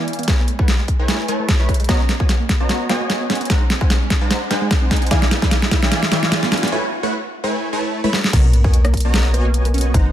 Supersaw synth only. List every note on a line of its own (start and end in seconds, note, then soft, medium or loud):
0.00 0.26 E3 medium
0.00 0.26 E4 medium
0.00 0.26 D5 medium
0.00 0.26 F5 medium
0.00 0.26 G#5 loud
0.28 0.40 A3 medium
0.28 0.40 E4 medium
0.28 0.40 B4 medium
0.28 0.40 C#5 medium
0.28 0.40 G#5 loud
0.59 0.69 A3 medium
0.59 0.69 E4 medium
0.59 0.69 B4 medium
0.59 0.69 C#5 medium
0.59 0.69 F#5 loud
0.99 1.26 A3 medium
0.99 1.26 E4 medium
0.99 1.26 B4 medium
0.99 1.26 C#5 medium
0.99 1.26 G#5 loud
1.29 1.57 A3 medium
1.29 1.57 E4 medium
1.29 1.57 B4 medium
1.29 1.57 C#5 medium
1.29 1.57 A5 medium
1.60 1.70 A3 medium
1.60 1.70 E4 medium
1.60 1.70 B4 medium
1.60 1.70 C#5 medium
1.60 1.70 B5 loud
1.89 2.01 B3 loud
1.89 2.01 F#4 medium
1.89 2.01 C#5 medium
1.89 2.01 D#5 medium
1.89 2.01 A#5 loud
2.20 2.30 B3 loud
2.20 2.30 F#4 medium
2.20 2.30 C#5 medium
2.20 2.30 D#5 medium
2.20 2.30 G#5 loud
2.60 2.87 B3 medium
2.60 2.87 F#4 medium
2.60 2.87 C#5 medium
2.60 2.87 D#5 medium
2.60 2.87 A#5 loud
2.90 3.48 B3 medium
2.90 3.48 F#4 medium
2.90 3.48 C#5 medium
2.90 3.48 D#5 medium
2.90 3.48 G#5 loud
3.50 3.62 G#3 medium
3.50 3.62 D#4 medium
3.50 3.62 C5 medium
3.50 3.62 F#5 medium
3.50 3.62 A#5 loud
3.81 3.91 G#3 medium
3.81 3.91 D#4 medium
3.81 3.91 C5 medium
3.81 3.91 F#5 medium
3.81 3.91 G#5 loud
4.21 4.48 G#3 medium
4.21 4.48 D#4 medium
4.21 4.48 C5 medium
4.21 4.48 F#5 medium
4.21 4.48 A#5 loud
4.51 5.09 G#3 medium
4.51 5.09 D#4 medium
4.51 5.09 C5 medium
4.51 5.09 F#5 medium
4.51 5.09 G#5 loud
5.11 5.23 E3 loud
5.11 5.23 E4 medium
5.11 5.23 D5 medium
5.11 5.23 F5 medium
5.11 5.23 G#5 loud
5.42 5.53 E3 medium
5.42 5.53 E4 medium
5.42 5.53 D5 medium
5.42 5.53 F5 medium
5.42 5.53 G#5 loud
5.83 6.10 E3 medium
5.83 6.10 E4 medium
5.83 6.10 D5 medium
5.83 6.10 F5 medium
5.83 6.10 G#5 loud
6.12 6.70 E3 medium
6.12 6.70 E4 medium
6.12 6.70 D5 medium
6.12 6.70 F5 medium
6.12 6.70 G#5 loud
6.72 6.84 A3 medium
6.72 6.84 E4 medium
6.72 6.84 B4 medium
6.72 6.84 C#5 medium
6.72 6.84 G#5 loud
7.03 7.14 A3 medium
7.03 7.14 E4 medium
7.03 7.14 B4 medium
7.03 7.14 C#5 medium
7.03 7.14 F#5 loud
7.44 7.71 A3 medium
7.44 7.71 E4 medium
7.44 7.71 B4 medium
7.44 7.71 C#5 medium
7.44 7.71 G#5 loud
7.73 8.01 A3 medium
7.73 8.01 E4 medium
7.73 8.01 B4 medium
7.73 8.01 C#5 medium
7.73 8.01 A5 medium
8.04 8.14 A3 loud
8.04 8.14 E4 medium
8.04 8.14 B4 medium
8.04 8.14 C#5 medium
8.04 8.14 B5 loud
8.33 8.45 B3 loud
8.33 8.45 F#4 medium
8.33 8.45 C#5 medium
8.33 8.45 D#5 medium
8.33 8.45 A#5 loud
8.65 8.75 B3 loud
8.65 8.75 F#4 medium
8.65 8.75 C#5 medium
8.65 8.75 D#5 medium
8.65 8.75 G#5 loud
9.05 9.32 B3 loud
9.05 9.32 F#4 medium
9.05 9.32 C#5 medium
9.05 9.32 D#5 medium
9.05 9.32 A#5 loud
9.34 9.92 B3 medium
9.34 9.92 F#4 medium
9.34 9.92 C#5 medium
9.34 9.92 D#5 medium
9.34 9.92 G#5 loud
9.94 10.06 G#3 medium
9.94 10.06 D#4 medium
9.94 10.06 C5 medium
9.94 10.06 F#5 medium
9.94 10.06 A#5 loud